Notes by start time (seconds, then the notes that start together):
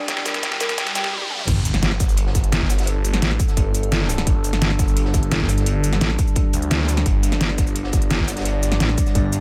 Already playing: G3 D4 G4, riser
0.08 G5, kick, snare, closed hi-hat
0.17 snare
0.26 A#4, snare, closed hi-hat, cabasa
0.34 snare, closed hi-hat
0.43 G5, kick, snare, closed hi-hat
0.52 snare
0.61 A#4, snare, closed hi-hat, cabasa
0.69 snare, closed hi-hat, cabasa
0.78 G5, kick, snare, closed hi-hat, swell
0.87 snare, closed hi-hat
0.95 G5, snare, closed hi-hat, cabasa
1.04 snare
1.13 high tom
1.22 high tom
1.30 mid tom
1.39 mid tom
1.47 G1 G3 D4 A4, kick, closed hi-hat, crash, sub drop
1.65 closed hi-hat, cabasa
1.74 snare, closed hi-hat
1.83 snare, closed hi-hat
1.91 snare
2.00 kick, snare, closed hi-hat, cabasa
2.09 cabasa
2.17 closed hi-hat
2.27 snare
2.35 G1, kick, snare, closed hi-hat, cabasa
2.44 closed hi-hat
2.52 snare, closed hi-hat, cabasa
2.61 kick
2.69 snare, closed hi-hat, open hi-hat, cabasa
2.78 snare, closed hi-hat
2.83 snare, closed hi-hat
2.87 closed hi-hat
3.05 closed hi-hat, cabasa
3.13 snare, closed hi-hat
3.22 A1, snare, closed hi-hat
3.31 snare
3.40 kick, closed hi-hat, cabasa
3.48 snare, cabasa
3.57 G1, kick, closed hi-hat
3.75 closed hi-hat, cabasa
3.83 closed hi-hat
3.92 snare, closed hi-hat, cabasa
4.09 snare, closed hi-hat, open hi-hat, cabasa
4.18 snare, closed hi-hat
4.27 G1, kick, closed hi-hat
4.44 closed hi-hat, cabasa
4.53 snare, closed hi-hat
4.62 snare, closed hi-hat
4.70 snare
4.79 kick, snare, closed hi-hat, cabasa
4.88 cabasa
4.97 closed hi-hat
5.05 snare
5.14 G1, kick, snare, closed hi-hat, cabasa
5.23 closed hi-hat
5.31 snare, closed hi-hat, cabasa
5.40 kick
5.49 closed hi-hat, open hi-hat, cabasa
5.58 snare, closed hi-hat
5.66 closed hi-hat
5.84 closed hi-hat, cabasa
5.93 snare, closed hi-hat
6.01 A1, snare, closed hi-hat
6.10 snare
6.19 kick, closed hi-hat, cabasa
6.27 cabasa
6.36 kick, closed hi-hat
6.53 D2, closed hi-hat, cabasa
6.62 closed hi-hat
6.71 snare, closed hi-hat, cabasa
6.80 snare
6.88 snare, closed hi-hat, open hi-hat, cabasa
6.97 snare, closed hi-hat
7.06 G1 D5, kick, closed hi-hat
7.23 closed hi-hat, cabasa
7.32 snare, closed hi-hat
7.41 snare, closed hi-hat
7.50 snare
7.58 kick, snare, closed hi-hat, cabasa
7.67 cabasa
7.76 closed hi-hat
7.84 snare
7.93 G1, kick, snare, closed hi-hat, cabasa
8.02 closed hi-hat
8.11 snare, closed hi-hat, cabasa
8.19 kick
8.27 snare, closed hi-hat, open hi-hat, cabasa
8.37 snare, closed hi-hat
8.40 snare, closed hi-hat
8.45 closed hi-hat
8.63 closed hi-hat, cabasa
8.71 snare, closed hi-hat
8.80 A1, snare, closed hi-hat
8.89 snare
8.98 kick, closed hi-hat, cabasa
9.06 snare, cabasa
9.15 G1, kick, closed hi-hat
9.32 closed hi-hat, cabasa